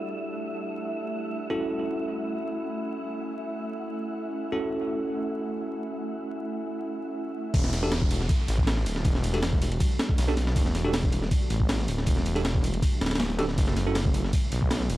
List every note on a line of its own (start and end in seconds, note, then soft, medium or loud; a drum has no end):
0.00 1.46 G3 medium
0.00 7.50 A3 medium
0.00 1.46 D4 medium
0.00 1.48 D4 medium
0.00 1.48 E4 medium
0.00 7.50 E4 medium
0.00 1.48 F#4 medium
0.00 1.48 G4 medium
0.00 1.48 A4 medium
0.00 7.55 E5 medium
0.00 7.50 F#5 medium
1.50 4.50 C#4 medium
1.50 7.50 C#4 medium
1.50 4.50 E4 medium
1.50 4.50 F#4 medium
1.50 4.50 A4 medium
4.52 7.52 C#4 medium
4.52 7.52 E4 medium
4.52 7.52 F#4 medium
4.52 7.52 A4 medium
7.54 8.28 E1 loud
7.54 13.54 G3 medium
7.54 14.97 A3 medium
7.54 13.54 D4 medium
7.54 13.54 F#4 medium
7.54 kick loud
7.54 closed hi-hat medium
7.54 ride medium
7.54 downlifter medium
7.64 snare soft
7.73 snare soft
7.73 closed hi-hat medium
7.73 ride medium
7.83 7.91 D4 medium
7.83 7.91 F#4 medium
7.83 7.91 G4 medium
7.83 7.91 A4 loud
7.92 snare loud
7.92 closed hi-hat medium
7.92 ride medium
8.02 kick loud
8.11 closed hi-hat medium
8.11 ride medium
8.21 snare soft
8.29 kick loud
8.29 closed hi-hat medium
8.29 ride medium
8.48 8.85 A1 medium
8.48 snare soft
8.48 closed hi-hat medium
8.48 ride medium
8.58 kick medium
8.67 snare loud
8.67 closed hi-hat medium
8.67 ride medium
8.77 snare soft
8.86 9.03 D1 loud
8.86 closed hi-hat medium
8.86 ride medium
8.96 snare soft
9.05 9.79 E1 loud
9.05 kick loud
9.05 closed hi-hat medium
9.05 ride medium
9.15 snare soft
9.24 closed hi-hat medium
9.24 ride medium
9.34 9.39 D4 medium
9.34 9.39 F#4 medium
9.34 9.39 G4 medium
9.34 9.39 A4 medium
9.34 snare soft
9.34 ride soft
9.43 snare loud
9.43 closed hi-hat medium
9.43 ride medium
9.53 kick loud
9.53 snare soft
9.61 closed hi-hat medium
9.61 ride medium
9.72 ride soft
9.80 kick loud
9.80 closed hi-hat medium
9.80 ride medium
9.99 snare loud
9.99 closed hi-hat medium
9.99 ride medium
10.09 kick medium
10.18 10.35 B1 loud
10.18 snare loud
10.18 closed hi-hat medium
10.18 ride medium
10.28 10.33 D4 loud
10.28 10.33 F#4 medium
10.28 10.33 G4 medium
10.28 10.33 A4 loud
10.28 snare soft
10.28 closed hi-hat soft
10.37 10.54 B1 medium
10.37 snare medium
10.37 closed hi-hat medium
10.37 ride medium
10.47 snare soft
10.47 snare medium
10.56 11.30 E1 loud
10.56 kick loud
10.56 closed hi-hat medium
10.56 ride medium
10.66 snare soft
10.75 snare soft
10.75 closed hi-hat medium
10.75 ride medium
10.85 10.93 D4 medium
10.85 10.93 F#4 medium
10.85 10.93 G4 medium
10.85 10.93 A4 loud
10.93 snare loud
10.93 closed hi-hat medium
10.93 ride medium
11.04 kick loud
11.12 closed hi-hat medium
11.12 ride medium
11.22 snare soft
11.31 kick loud
11.31 closed hi-hat medium
11.31 ride medium
11.50 11.87 A1 medium
11.50 snare soft
11.50 closed hi-hat medium
11.50 ride medium
11.60 kick medium
11.69 snare loud
11.69 closed hi-hat medium
11.69 ride medium
11.79 snare soft
11.88 12.05 D1 loud
11.88 closed hi-hat medium
11.88 ride medium
11.98 snare soft
12.06 12.81 E1 loud
12.06 kick loud
12.06 closed hi-hat medium
12.06 ride medium
12.17 snare soft
12.26 closed hi-hat medium
12.26 ride medium
12.35 12.41 D4 medium
12.35 12.41 F#4 medium
12.35 12.41 G4 medium
12.35 12.41 A4 medium
12.35 snare soft
12.35 ride soft
12.45 snare loud
12.45 closed hi-hat medium
12.45 ride medium
12.55 kick loud
12.55 snare soft
12.64 closed hi-hat medium
12.64 ride medium
12.74 ride soft
12.82 kick loud
12.82 closed hi-hat medium
12.82 ride medium
13.01 13.57 D1 loud
13.01 snare medium
13.01 closed hi-hat medium
13.01 ride medium
13.06 snare medium
13.06 ride medium
13.11 snare medium
13.11 ride medium
13.15 snare medium
13.15 ride medium
13.19 snare loud
13.19 closed hi-hat medium
13.19 ride medium
13.30 snare soft
13.30 closed hi-hat soft
13.39 13.44 D4 loud
13.39 13.44 F#4 medium
13.39 13.44 G4 medium
13.39 13.44 A4 loud
13.39 snare medium
13.39 ride medium
13.49 snare medium
13.58 14.32 F#1 loud
13.58 14.97 F#3 medium
13.58 14.97 C#4 medium
13.58 14.97 E4 medium
13.58 kick loud
13.58 closed hi-hat medium
13.58 ride medium
13.68 snare soft
13.76 snare soft
13.76 closed hi-hat medium
13.76 ride medium
13.87 13.95 C#4 medium
13.87 13.95 E4 medium
13.87 13.95 F#4 medium
13.87 13.95 A4 loud
13.95 snare loud
13.95 closed hi-hat medium
13.95 ride medium
14.05 kick loud
14.14 closed hi-hat medium
14.14 ride medium
14.24 snare soft
14.33 kick loud
14.33 closed hi-hat medium
14.33 ride medium
14.52 14.89 B1 medium
14.52 snare soft
14.52 closed hi-hat medium
14.52 ride medium
14.62 kick medium
14.70 snare loud
14.70 closed hi-hat medium
14.70 ride medium
14.81 snare soft
14.90 14.97 E1 loud
14.90 closed hi-hat medium
14.90 ride medium